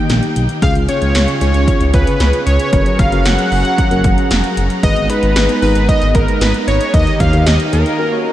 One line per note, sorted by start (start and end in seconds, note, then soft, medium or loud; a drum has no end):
0.00 0.60 D#3 medium
0.00 0.41 A#3 medium
0.00 0.41 D#4 medium
0.00 0.58 D#4 medium
0.00 0.41 G4 loud
0.00 0.60 G4 medium
0.00 0.32 G5 loud
0.00 0.58 A#5 medium
0.10 0.21 A#1 loud
0.10 snare loud
0.10 closed hi-hat medium
0.23 closed hi-hat soft
0.36 0.48 B1 medium
0.36 closed hi-hat medium
0.49 closed hi-hat medium
0.62 0.74 C#2 loud
0.62 2.71 C#3 medium
0.62 2.71 C#4 medium
0.62 0.82 C#4 medium
0.62 2.71 F4 medium
0.62 0.82 F4 medium
0.62 4.79 G#4 medium
0.62 0.82 G#4 medium
0.62 0.74 F5 loud
0.62 kick loud
0.62 closed hi-hat medium
0.75 0.87 C#2 loud
0.75 closed hi-hat soft
0.89 1.29 C#4 medium
0.89 1.29 F4 medium
0.89 1.29 G#4 medium
0.89 1.38 C#5 loud
0.89 closed hi-hat medium
1.02 1.13 C#2 medium
1.02 closed hi-hat medium
1.15 1.26 C#2 loud
1.15 snare loud
1.15 closed hi-hat medium
1.28 closed hi-hat medium
1.41 1.53 C#2 loud
1.41 2.22 C#4 medium
1.41 2.22 F4 medium
1.41 2.22 G#4 medium
1.41 1.90 C#5 medium
1.41 closed hi-hat medium
1.54 1.66 C#2 loud
1.54 closed hi-hat medium
1.68 kick medium
1.68 closed hi-hat medium
1.81 1.92 C#2 loud
1.81 closed hi-hat medium
1.94 2.05 C#2 loud
1.94 2.43 B4 medium
1.94 kick loud
1.94 closed hi-hat medium
2.07 closed hi-hat soft
2.20 2.32 C#2 loud
2.20 snare loud
2.20 closed hi-hat medium
2.33 closed hi-hat soft
2.46 2.58 C#2 loud
2.46 3.00 C#5 loud
2.46 closed hi-hat medium
2.60 closed hi-hat medium
2.73 2.84 F#1 loud
2.73 4.81 F#3 medium
2.73 4.81 C#4 medium
2.73 3.03 C#4 medium
2.73 3.03 F#4 medium
2.73 3.03 A#4 medium
2.73 7.95 A#5 medium
2.73 kick loud
2.73 closed hi-hat medium
2.86 closed hi-hat soft
2.99 3.11 F#1 loud
2.99 3.27 F5 loud
2.99 kick medium
2.99 closed hi-hat medium
3.12 3.24 F#1 loud
3.12 3.73 C#4 medium
3.12 3.73 F#4 medium
3.12 3.73 A#4 medium
3.12 closed hi-hat medium
3.25 3.37 F#1 loud
3.25 4.57 F#5 loud
3.25 snare loud
3.25 closed hi-hat medium
3.39 closed hi-hat medium
3.52 3.63 F#1 loud
3.52 open hi-hat medium
3.65 closed hi-hat medium
3.78 kick medium
3.78 closed hi-hat medium
3.91 4.03 F#1 loud
3.91 4.62 C#4 medium
3.91 4.62 F#4 medium
3.91 4.62 A#4 loud
3.91 closed hi-hat medium
4.04 4.16 F#1 loud
4.04 kick loud
4.04 closed hi-hat medium
4.18 closed hi-hat soft
4.31 4.42 F1 medium
4.31 snare loud
4.31 closed hi-hat medium
4.44 closed hi-hat soft
4.57 4.69 F#1 loud
4.57 closed hi-hat medium
4.70 closed hi-hat medium
4.83 4.95 G#1 loud
4.83 6.92 G#3 medium
4.83 6.92 B3 medium
4.83 7.96 D#4 medium
4.83 5.04 D#4 medium
4.83 5.04 G#4 medium
4.83 5.04 B4 medium
4.83 5.11 D#5 loud
4.83 kick loud
4.83 closed hi-hat medium
4.96 5.08 G#1 loud
4.96 closed hi-hat soft
5.10 5.50 D#4 medium
5.10 5.50 G#4 medium
5.10 5.62 B4 medium
5.10 5.50 B4 medium
5.10 closed hi-hat medium
5.23 5.34 G#1 medium
5.23 closed hi-hat medium
5.36 5.48 G#1 loud
5.36 snare loud
5.36 closed hi-hat medium
5.49 closed hi-hat medium
5.62 5.74 G#1 loud
5.62 6.43 D#4 medium
5.62 6.43 G#4 medium
5.62 6.43 A#4 medium
5.62 5.87 B4 medium
5.62 open hi-hat medium
5.75 5.87 G#1 loud
5.75 closed hi-hat medium
5.89 6.16 D#5 loud
5.89 kick medium
5.89 closed hi-hat medium
6.02 6.13 G#1 medium
6.02 closed hi-hat medium
6.15 6.26 G#1 medium
6.15 6.41 A#4 medium
6.15 kick loud
6.15 closed hi-hat medium
6.28 closed hi-hat soft
6.41 6.53 G#1 loud
6.41 6.53 B4 loud
6.41 snare loud
6.41 closed hi-hat medium
6.54 closed hi-hat soft
6.67 6.79 G#1 loud
6.67 6.92 C#5 loud
6.67 closed hi-hat medium
6.81 closed hi-hat medium
6.94 7.05 D#2 loud
6.94 7.98 D#3 medium
6.94 7.24 D#4 medium
6.94 7.98 G4 medium
6.94 7.24 G4 medium
6.94 7.24 A#4 medium
6.94 7.22 D#5 loud
6.94 kick loud
6.94 closed hi-hat medium
7.07 closed hi-hat soft
7.20 7.32 D#2 loud
7.20 7.46 F5 loud
7.20 kick loud
7.20 closed hi-hat medium
7.33 7.45 D#2 loud
7.33 7.94 D#4 medium
7.33 7.94 G4 medium
7.33 7.94 A#4 medium
7.33 closed hi-hat medium
7.46 7.58 D#2 loud
7.46 7.58 D#5 loud
7.46 snare loud
7.46 closed hi-hat medium
7.60 closed hi-hat medium
7.73 7.84 D#2 loud
7.73 8.32 A#4 medium
7.73 closed hi-hat medium
7.86 closed hi-hat medium
7.99 8.32 A#3 medium
7.99 8.32 C#4 medium
7.99 8.10 C#4 medium
7.99 8.10 F#4 medium
7.99 8.32 F#4 medium
7.99 8.10 A#4 medium
8.12 8.32 C#4 medium
8.12 8.32 F#4 medium
8.12 8.32 C#5 medium